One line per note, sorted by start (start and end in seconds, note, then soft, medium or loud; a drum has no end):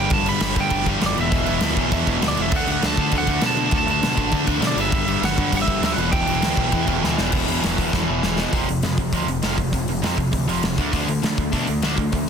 0.00 0.11 G2 loud
0.00 0.11 D3 loud
0.00 0.12 G3 loud
0.00 0.11 G5 loud
0.10 0.36 G1 loud
0.10 0.25 G2 medium
0.10 0.26 D3 loud
0.10 0.27 G3 loud
0.10 0.27 A5 loud
0.10 kick loud
0.10 crash medium
0.26 0.41 G2 medium
0.26 0.40 D3 medium
0.26 0.41 G3 medium
0.26 0.59 B5 loud
0.26 crash medium
0.40 0.53 G1 medium
0.40 0.54 G2 medium
0.40 0.55 D3 medium
0.40 0.56 G3 medium
0.40 snare loud
0.40 crash medium
0.56 0.71 G2 medium
0.56 0.69 G2 medium
0.56 0.70 D3 medium
0.56 0.70 G3 loud
0.56 kick loud
0.56 crash medium
0.60 0.87 G5 loud
0.70 0.96 G1 loud
0.70 0.85 G2 medium
0.70 0.86 D3 loud
0.70 0.86 G3 loud
0.70 kick loud
0.70 crash medium
0.86 1.00 G2 medium
0.86 1.00 D3 loud
0.86 1.00 G3 loud
0.86 kick medium
0.86 crash medium
1.01 1.14 F#1 medium
1.01 1.15 G2 medium
1.01 1.15 D3 medium
1.01 1.16 G3 loud
1.01 snare loud
1.01 crash medium
1.06 1.18 D5 medium
1.15 1.29 E1 medium
1.15 1.30 E2 loud
1.15 1.30 B2 loud
1.15 1.30 E3 loud
1.15 crash medium
1.21 2.20 E5 loud
1.31 1.44 E1 loud
1.31 1.44 E2 medium
1.31 1.44 B2 medium
1.31 1.44 E3 loud
1.31 kick loud
1.31 crash medium
1.45 1.59 E1 medium
1.45 1.61 E2 medium
1.45 1.61 B2 medium
1.45 1.60 E3 medium
1.45 crash medium
1.61 1.74 D2 medium
1.61 1.75 E2 medium
1.61 1.76 B2 medium
1.61 1.76 E3 loud
1.61 snare loud
1.61 crash medium
1.76 1.89 B1 loud
1.76 1.91 E2 medium
1.76 1.91 B2 medium
1.76 1.91 E3 loud
1.76 kick medium
1.76 crash medium
1.92 2.04 E2 medium
1.92 2.05 E2 medium
1.92 2.05 B2 loud
1.92 2.06 E3 loud
1.92 kick loud
1.92 crash medium
2.06 2.19 E1 medium
2.06 2.21 E2 loud
2.06 2.21 B2 loud
2.06 2.20 E3 loud
2.06 kick medium
2.06 crash medium
2.21 2.34 D2 medium
2.21 2.36 E2 medium
2.21 2.36 B2 medium
2.21 2.37 E3 loud
2.21 snare loud
2.21 crash loud
2.28 2.41 D5 medium
2.36 2.49 E1 medium
2.36 2.52 E2 medium
2.36 2.52 B2 medium
2.36 2.52 E3 medium
2.36 crash medium
2.42 2.55 E5 medium
2.52 2.76 D2 loud
2.52 2.68 D3 loud
2.52 2.68 A3 loud
2.52 2.67 D4 loud
2.52 kick loud
2.52 crash medium
2.56 2.70 F#5 loud
2.67 2.82 D3 medium
2.67 2.82 A3 medium
2.67 2.83 D4 medium
2.67 crash medium
2.72 2.86 F#5 loud
2.82 2.95 D2 medium
2.82 2.98 D3 medium
2.82 2.97 A3 medium
2.82 2.98 D4 loud
2.82 3.15 A5 loud
2.82 snare loud
2.82 crash medium
2.97 3.10 D3 loud
2.97 3.11 D3 medium
2.97 3.11 A3 medium
2.97 3.13 D4 medium
2.97 kick medium
2.97 crash medium
3.12 3.37 D2 loud
3.12 3.27 D3 medium
3.12 3.27 A3 loud
3.12 3.27 D4 loud
3.12 kick loud
3.12 crash medium
3.18 3.43 F#5 loud
3.27 3.40 D3 medium
3.27 3.41 A3 loud
3.27 3.42 D4 loud
3.27 kick medium
3.27 crash medium
3.41 3.67 B2 medium
3.41 3.57 D3 medium
3.41 3.56 A3 medium
3.41 3.56 D4 loud
3.41 snare loud
3.41 crash medium
3.46 3.76 A5 loud
3.56 3.71 D3 medium
3.56 3.72 A3 medium
3.56 3.73 D4 loud
3.56 crash medium
3.71 3.84 D2 loud
3.71 3.87 D3 loud
3.71 3.86 A3 loud
3.71 3.87 D4 loud
3.71 kick loud
3.71 crash medium
3.78 3.89 A5 loud
3.87 3.99 D2 medium
3.87 4.01 D3 medium
3.87 4.01 A3 medium
3.87 4.02 D4 medium
3.87 crash medium
3.91 4.45 A5 loud
4.02 4.15 B2 loud
4.02 4.17 D3 medium
4.02 4.16 A3 medium
4.02 4.15 D4 loud
4.02 snare loud
4.02 crash medium
4.17 4.30 A1 loud
4.17 4.31 D3 medium
4.17 4.32 A3 medium
4.17 4.32 D4 loud
4.17 kick medium
4.17 crash medium
4.32 4.46 D3 loud
4.32 4.45 D3 loud
4.32 4.45 A3 loud
4.32 4.45 D4 loud
4.32 kick medium
4.32 crash medium
4.46 4.59 D2 loud
4.46 4.60 D3 medium
4.46 4.60 A3 loud
4.46 4.60 D4 loud
4.46 kick medium
4.46 crash medium
4.60 4.73 B2 medium
4.60 4.75 D3 medium
4.60 4.76 A3 loud
4.60 4.76 D4 loud
4.60 snare loud
4.60 crash medium
4.67 4.80 D5 medium
4.75 4.88 G1 loud
4.75 4.91 G2 loud
4.75 4.90 D3 loud
4.75 4.91 G3 loud
4.75 crash medium
4.80 5.24 E5 medium
4.92 5.17 G1 loud
4.92 5.05 G2 medium
4.92 5.06 D3 medium
4.92 5.07 G3 loud
4.92 kick loud
4.92 crash medium
5.06 5.22 G2 medium
5.06 5.22 D3 medium
5.06 5.22 G3 loud
5.06 crash medium
5.22 5.34 G1 loud
5.22 5.36 G2 medium
5.22 5.37 D3 medium
5.22 5.38 G3 medium
5.22 5.55 F#5 loud
5.22 snare loud
5.22 crash medium
5.37 5.53 G2 medium
5.37 5.50 G2 loud
5.37 5.53 D3 medium
5.37 5.53 G3 medium
5.37 kick medium
5.37 crash medium
5.53 5.77 G1 loud
5.53 5.65 G2 loud
5.53 5.66 D3 loud
5.53 5.67 G3 loud
5.53 kick loud
5.53 crash medium
5.57 5.61 F#5 loud
5.62 5.82 E5 medium
5.66 5.82 G2 loud
5.66 5.81 D3 loud
5.66 5.81 G3 loud
5.66 kick medium
5.66 crash medium
5.82 5.94 D2 medium
5.82 5.97 G2 medium
5.82 5.97 D3 medium
5.82 5.97 G3 medium
5.82 snare loud
5.82 crash medium
5.86 5.93 E5 medium
5.93 6.09 E1 loud
5.93 6.12 F#5 medium
5.97 6.12 E2 loud
5.97 6.11 B2 loud
5.97 6.11 E3 loud
5.97 crash medium
6.12 6.25 E1 loud
6.12 6.25 E2 medium
6.12 6.26 B2 medium
6.12 6.26 E3 medium
6.12 7.14 G5 medium
6.12 kick loud
6.12 crash medium
6.27 6.39 E1 medium
6.27 6.41 E2 medium
6.27 6.41 B2 medium
6.27 6.41 E3 loud
6.27 crash medium
6.40 6.53 D2 loud
6.40 6.55 E2 medium
6.40 6.55 B2 medium
6.40 6.56 E3 loud
6.40 snare loud
6.40 crash medium
6.56 6.69 B1 medium
6.56 6.72 E2 medium
6.56 6.72 B2 medium
6.56 6.71 E3 medium
6.56 kick medium
6.56 crash medium
6.72 6.85 E2 medium
6.72 6.85 B2 loud
6.72 6.86 E3 loud
6.72 kick loud
6.72 crash medium
6.86 7.00 E1 medium
6.86 7.02 E2 medium
6.86 7.01 B2 medium
6.86 7.00 E3 loud
6.86 kick medium
6.86 crash medium
7.02 7.16 D2 medium
7.02 7.16 E2 medium
7.02 7.16 B2 medium
7.02 7.17 E3 loud
7.02 snare medium
7.17 7.30 E1 medium
7.17 7.30 E2 medium
7.17 7.31 B2 medium
7.17 7.31 E3 loud
7.17 snare medium
7.31 7.43 E1 medium
7.31 7.46 E2 loud
7.31 7.46 B2 loud
7.31 7.46 E3 loud
7.31 kick loud
7.31 crash loud
7.47 7.59 E1 medium
7.47 7.61 E2 medium
7.47 7.62 B2 medium
7.47 7.62 E3 medium
7.47 open hi-hat medium
7.62 7.74 E1 medium
7.62 7.77 E2 medium
7.62 7.76 B2 medium
7.62 7.76 E3 medium
7.62 snare loud
7.62 open hi-hat medium
7.77 7.89 E1 medium
7.77 7.91 E2 medium
7.77 7.91 B2 medium
7.77 7.92 E3 loud
7.77 kick medium
7.77 open hi-hat medium
7.92 8.04 E1 medium
7.92 8.07 E2 medium
7.92 8.07 B2 medium
7.92 8.06 E3 loud
7.92 kick medium
7.92 snare medium
8.08 8.19 E1 medium
8.08 8.21 E2 medium
8.08 8.21 B2 medium
8.08 8.22 E3 loud
8.22 8.44 E1 medium
8.22 8.37 E2 medium
8.22 8.36 B2 medium
8.22 8.36 E3 loud
8.22 snare medium
8.37 8.52 E2 medium
8.37 8.52 B2 medium
8.37 8.52 E3 medium
8.37 snare medium
8.53 8.65 F1 medium
8.53 8.67 F2 medium
8.53 8.67 C3 medium
8.53 8.67 F3 medium
8.53 kick loud
8.53 open hi-hat medium
8.68 8.81 F1 medium
8.68 8.82 F2 medium
8.68 8.82 C3 medium
8.68 open hi-hat medium
8.83 8.97 F2 medium
8.83 8.96 F2 medium
8.83 8.97 C3 medium
8.83 snare loud
8.83 open hi-hat medium
8.98 9.10 F1 medium
8.98 9.11 F2 medium
8.98 9.12 C3 medium
8.98 kick medium
8.98 open hi-hat medium
9.12 9.25 D2 medium
9.12 9.27 F2 medium
9.12 9.28 C3 medium
9.12 9.28 F3 medium
9.12 kick medium
9.12 open hi-hat medium
9.27 9.39 F1 medium
9.27 9.42 F2 medium
9.27 9.42 C3 medium
9.27 open hi-hat medium
9.43 9.55 F1 medium
9.43 9.56 F2 medium
9.43 9.58 C3 medium
9.43 9.58 F3 medium
9.43 snare loud
9.43 open hi-hat medium
9.58 9.70 F1 medium
9.58 9.72 F2 medium
9.58 9.72 C3 medium
9.58 kick medium
9.58 open hi-hat medium
9.73 9.85 F1 medium
9.73 9.87 F2 medium
9.73 9.87 C3 medium
9.73 kick medium
9.73 open hi-hat medium
9.87 10.00 F1 medium
9.87 10.01 F2 medium
9.87 10.01 C3 medium
9.87 open hi-hat medium
10.02 10.15 F2 medium
10.02 10.16 C3 medium
10.02 10.17 F3 loud
10.02 snare loud
10.02 open hi-hat medium
10.17 10.30 F1 medium
10.17 10.30 F2 medium
10.17 10.30 C3 medium
10.17 kick medium
10.17 open hi-hat medium
10.31 10.45 D2 medium
10.31 10.46 F2 medium
10.31 10.46 C3 medium
10.31 kick medium
10.31 open hi-hat medium
10.47 10.60 F1 medium
10.47 10.61 F2 medium
10.47 10.62 C3 loud
10.47 10.62 F3 loud
10.47 open hi-hat medium
10.62 10.75 F1 medium
10.62 10.77 F2 medium
10.62 10.77 C3 medium
10.62 snare loud
10.62 open hi-hat medium
10.78 10.90 D2 medium
10.78 10.91 D3 medium
10.78 10.91 A3 loud
10.78 10.93 D4 loud
10.78 kick medium
10.78 open hi-hat medium
10.92 11.05 D2 loud
10.92 11.07 D3 medium
10.92 11.07 A3 medium
10.92 11.08 D4 medium
10.92 kick medium
10.92 open hi-hat medium
11.08 11.20 D2 medium
11.08 11.21 D3 medium
11.08 11.22 A3 medium
11.08 open hi-hat medium
11.22 11.36 D3 medium
11.22 11.35 D3 medium
11.22 11.36 A3 medium
11.22 snare loud
11.22 open hi-hat medium
11.37 11.50 D2 medium
11.37 11.51 D3 medium
11.37 11.51 A3 medium
11.37 kick medium
11.37 open hi-hat medium
11.52 11.65 B2 medium
11.52 11.65 D3 medium
11.52 11.66 A3 medium
11.52 11.67 D4 medium
11.52 kick medium
11.52 open hi-hat medium
11.67 11.80 D2 medium
11.67 11.81 D3 medium
11.67 11.81 A3 medium
11.67 open hi-hat medium
11.82 11.96 D2 medium
11.82 11.96 D3 medium
11.82 11.97 A3 medium
11.82 11.97 D4 loud
11.82 snare loud
11.82 open hi-hat medium
11.97 12.10 D2 medium
11.97 12.11 D3 medium
11.97 12.12 A3 medium
11.97 kick medium
11.97 open hi-hat medium
12.12 12.25 D2 medium
12.12 12.26 D3 medium
12.12 12.26 A3 medium
12.12 kick medium
12.12 open hi-hat medium